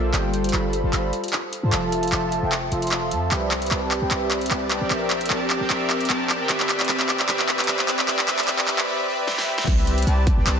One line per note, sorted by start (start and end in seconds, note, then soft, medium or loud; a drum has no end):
0.00 0.12 A#1 loud
0.00 0.11 A#3 medium
0.00 0.11 F4 medium
0.00 0.11 A4 medium
0.00 0.11 C5 medium
0.00 0.11 D5 medium
0.00 0.11 E5 medium
0.13 0.51 G1 loud
0.13 0.51 G3 medium
0.13 0.51 F4 medium
0.13 0.51 A4 medium
0.13 0.51 C5 medium
0.13 0.51 G5 loud
0.13 clap medium
0.13 closed hi-hat medium
0.34 closed hi-hat medium
0.44 closed hi-hat soft
0.49 closed hi-hat medium
0.53 0.82 G1 medium
0.53 0.81 G3 medium
0.53 0.81 F4 medium
0.53 0.81 A4 medium
0.53 0.81 C5 medium
0.53 0.81 B5 medium
0.53 clap medium
0.53 closed hi-hat medium
0.73 closed hi-hat medium
0.84 0.91 G1 loud
0.84 0.91 G3 loud
0.84 0.91 F4 medium
0.84 0.91 A4 medium
0.84 0.91 C5 medium
0.84 0.91 A5 loud
0.93 1.11 G1 loud
0.93 1.13 G3 medium
0.93 1.13 F4 medium
0.93 1.13 A4 medium
0.93 1.13 C5 medium
0.93 1.13 B5 loud
0.93 clap medium
0.93 closed hi-hat medium
1.13 closed hi-hat medium
1.24 closed hi-hat soft
1.28 closed hi-hat medium
1.33 clap medium
1.33 closed hi-hat medium
1.53 closed hi-hat medium
1.63 1.71 G2 medium
1.63 1.70 G3 medium
1.63 1.70 F4 medium
1.63 1.70 A4 medium
1.63 1.70 C5 medium
1.63 1.70 A5 medium
1.72 2.10 F1 medium
1.72 2.10 F3 medium
1.72 2.10 F4 medium
1.72 2.10 A4 medium
1.72 2.10 E5 medium
1.72 2.10 A5 loud
1.72 clap medium
1.72 closed hi-hat medium
1.92 closed hi-hat medium
2.03 closed hi-hat soft
2.08 closed hi-hat medium
2.12 2.41 F1 medium
2.12 2.40 F3 medium
2.12 2.40 F4 medium
2.12 2.40 A4 medium
2.12 2.40 E5 medium
2.12 2.40 A5 loud
2.12 clap medium
2.12 closed hi-hat medium
2.32 closed hi-hat medium
2.43 2.70 F1 medium
2.43 2.55 F3 loud
2.43 2.55 F4 medium
2.43 2.55 A4 medium
2.43 2.55 E5 medium
2.43 2.55 G5 loud
2.52 clap medium
2.52 closed hi-hat medium
2.72 3.13 F1 loud
2.72 3.09 F3 medium
2.72 3.09 F4 medium
2.72 3.09 A4 medium
2.72 3.09 E5 medium
2.72 3.09 C6 loud
2.72 closed hi-hat medium
2.82 closed hi-hat soft
2.87 closed hi-hat medium
2.91 clap medium
2.91 closed hi-hat medium
3.11 3.30 F2 loud
3.11 3.29 F3 medium
3.11 3.29 F4 medium
3.11 3.29 A4 medium
3.11 3.29 E5 medium
3.11 3.29 A5 medium
3.11 closed hi-hat medium
3.31 3.69 C2 loud
3.31 3.69 C4 medium
3.31 3.69 G4 medium
3.31 3.69 B4 medium
3.31 3.69 D5 medium
3.31 3.69 E5 medium
3.31 clap medium
3.31 closed hi-hat medium
3.51 clap medium
3.51 closed hi-hat medium
3.62 closed hi-hat soft
3.66 closed hi-hat medium
3.71 4.00 C2 loud
3.71 3.99 C4 medium
3.71 3.99 G4 medium
3.71 3.99 B4 medium
3.71 3.99 D5 medium
3.71 3.99 A5 medium
3.71 clap medium
3.71 closed hi-hat medium
3.91 clap medium
3.91 closed hi-hat medium
4.02 4.09 C2 loud
4.02 4.09 C4 medium
4.02 4.09 G4 medium
4.02 4.09 B4 medium
4.02 4.09 D5 medium
4.02 4.09 G5 loud
4.11 4.49 C2 loud
4.11 4.48 C4 medium
4.11 4.48 G4 medium
4.11 4.48 B4 medium
4.11 4.48 D5 medium
4.11 4.48 E5 loud
4.11 clap medium
4.11 closed hi-hat medium
4.31 clap medium
4.31 closed hi-hat medium
4.41 closed hi-hat soft
4.46 closed hi-hat medium
4.51 4.79 C2 loud
4.51 4.79 C4 medium
4.51 4.79 G4 medium
4.51 4.79 B4 medium
4.51 4.79 D5 medium
4.51 4.79 A5 medium
4.51 clap medium
4.51 closed hi-hat medium
4.71 clap medium
4.71 closed hi-hat medium
4.81 4.89 A#1 loud
4.81 4.88 C4 medium
4.81 4.88 G4 medium
4.81 4.88 A#4 medium
4.81 4.88 D5 medium
4.81 4.88 G5 loud
4.90 5.28 A#1 loud
4.90 5.28 C4 medium
4.90 5.28 G4 medium
4.90 5.28 A#4 medium
4.90 5.28 D5 medium
4.90 5.28 E5 medium
4.90 clap medium
4.90 closed hi-hat medium
5.10 clap medium
5.10 closed hi-hat medium
5.21 closed hi-hat soft
5.26 closed hi-hat medium
5.30 5.59 A#1 loud
5.30 5.58 C4 medium
5.30 5.58 G4 medium
5.30 5.58 A#4 medium
5.30 5.58 D5 medium
5.30 5.58 A5 medium
5.30 clap medium
5.30 closed hi-hat medium
5.50 clap medium
5.50 closed hi-hat medium
5.61 5.68 A#1 loud
5.61 5.68 C4 medium
5.61 5.68 G4 medium
5.61 5.68 A#4 medium
5.61 5.68 D5 medium
5.61 5.68 G5 loud
5.70 6.08 A#1 loud
5.70 6.08 C4 medium
5.70 6.08 G4 medium
5.70 6.08 A#4 medium
5.70 6.08 D5 medium
5.70 6.08 E5 loud
5.70 clap medium
5.70 closed hi-hat medium
5.90 clap medium
5.90 closed hi-hat medium
6.01 closed hi-hat soft
6.05 closed hi-hat medium
6.10 6.42 A#1 loud
6.10 6.38 C4 medium
6.10 6.38 G4 medium
6.10 6.38 A#4 medium
6.10 6.38 D5 medium
6.10 6.38 A5 medium
6.10 clap medium
6.10 closed hi-hat medium
6.30 clap medium
6.30 closed hi-hat medium
6.40 6.47 G1 loud
6.40 6.47 C4 medium
6.40 6.47 G4 medium
6.40 6.47 A#4 medium
6.40 6.47 D5 medium
6.40 6.47 G5 loud
6.49 6.87 G1 loud
6.49 6.87 C4 medium
6.49 6.87 G4 medium
6.49 6.87 B4 medium
6.49 6.87 D5 medium
6.49 6.87 E5 loud
6.49 clap medium
6.49 closed hi-hat medium
6.60 clap medium
6.69 clap medium
6.69 closed hi-hat medium
6.80 clap medium
6.80 closed hi-hat medium
6.85 closed hi-hat medium
6.89 7.27 G1 medium
6.89 7.27 C4 medium
6.89 7.27 G4 medium
6.89 7.27 B4 medium
6.89 7.27 D5 medium
6.89 7.27 E5 loud
6.89 clap loud
6.89 closed hi-hat medium
7.00 clap medium
7.09 clap medium
7.09 closed hi-hat medium
7.20 clap medium
7.29 7.67 G1 loud
7.29 7.66 C4 medium
7.29 7.66 G4 medium
7.29 7.66 B4 medium
7.29 7.66 D5 medium
7.29 7.66 E5 loud
7.29 clap loud
7.29 closed hi-hat medium
7.39 clap medium
7.49 clap medium
7.49 closed hi-hat medium
7.59 clap medium
7.59 closed hi-hat medium
7.64 closed hi-hat medium
7.68 8.06 G1 loud
7.68 8.06 C4 medium
7.68 8.06 G4 medium
7.68 8.06 B4 medium
7.68 8.06 D5 medium
7.68 8.06 E5 loud
7.68 clap loud
7.68 closed hi-hat medium
7.79 clap medium
7.88 clap loud
7.88 closed hi-hat medium
7.99 clap medium
8.08 8.26 F1 loud
8.08 8.27 C4 medium
8.08 8.27 G4 medium
8.08 8.27 B4 medium
8.08 8.27 D5 medium
8.08 8.27 E5 loud
8.08 clap loud
8.08 closed hi-hat medium
8.19 clap medium
8.28 8.46 F1 loud
8.28 8.47 C4 medium
8.28 8.47 G4 medium
8.28 8.47 B4 medium
8.28 8.47 D5 medium
8.28 8.47 E5 loud
8.28 clap loud
8.28 closed hi-hat medium
8.39 clap loud
8.39 closed hi-hat medium
8.43 closed hi-hat medium
8.48 8.66 F1 loud
8.48 8.66 C4 medium
8.48 8.66 G4 medium
8.48 8.66 B4 medium
8.48 8.66 D5 medium
8.48 8.67 E5 loud
8.48 clap loud
8.48 closed hi-hat medium
8.59 clap medium
8.68 8.86 F1 medium
8.68 8.86 C4 medium
8.68 8.86 G4 medium
8.68 8.86 B4 medium
8.68 8.86 D5 medium
8.68 8.86 E5 loud
8.68 clap loud
8.68 closed hi-hat medium
8.78 clap medium
8.88 9.06 C4 medium
8.88 9.06 G4 medium
8.88 9.06 B4 medium
8.88 9.06 D5 medium
8.88 9.06 E5 loud
9.08 9.26 C4 loud
9.08 9.26 G4 medium
9.08 9.26 B4 medium
9.08 9.26 D5 medium
9.08 9.26 E5 loud
9.27 9.46 C4 loud
9.27 9.46 G4 medium
9.27 9.46 B4 medium
9.27 9.46 D5 medium
9.27 9.46 E5 loud
9.27 snare medium
9.38 snare medium
9.47 9.66 C4 loud
9.47 9.66 G4 medium
9.47 9.66 B4 medium
9.47 9.66 D5 medium
9.47 9.66 E5 loud
9.58 snare medium
9.67 10.05 C2 loud
9.67 10.05 C4 medium
9.67 10.05 G4 medium
9.67 10.05 D5 medium
9.67 10.05 E5 loud
9.67 kick loud
9.67 closed hi-hat medium
9.67 crash loud
9.87 closed hi-hat medium
9.98 closed hi-hat medium
10.02 closed hi-hat medium
10.07 10.35 C2 loud
10.07 10.35 C4 medium
10.07 10.35 G4 medium
10.07 10.35 B4 medium
10.07 10.35 D5 medium
10.07 10.35 A5 loud
10.07 closed hi-hat medium
10.27 kick loud
10.27 closed hi-hat medium
10.37 10.45 C2 loud
10.37 10.45 C4 medium
10.37 10.45 G4 medium
10.37 10.45 B4 medium
10.37 10.45 D5 medium
10.37 10.45 G5 loud
10.47 10.60 C2 loud
10.47 10.60 C4 loud
10.47 10.60 G4 medium
10.47 10.60 B4 medium
10.47 10.60 D5 medium
10.47 10.60 A5 loud
10.47 clap loud
10.47 closed hi-hat medium